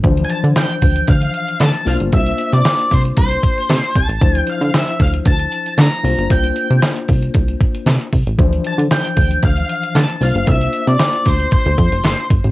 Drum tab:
HH |xxxxxxoxxxxxxxox|xxxxxxoxxxxxxxxx|xxxxxxoxxxxxxxox|xxxxxxoxxxxxxxox|
CP |----x-------x---|----x-------x---|----x-------x---|----x-------x---|
SD |----o-------o---|----o-------o---|----o-------o---|----o-------o---|
BD |o-----o-o-------|o-----o-o-o---o-|o-----o-o-------|o-----o-o-o---o-|

HH |xxxxxxoxxxxxxxox|xxxxxxoxxxxxxxxx|
CP |----x-------x---|----x-------x---|
SD |----o-------o---|----o-------o---|
BD |o-----o-o-------|o-----o-o-o---o-|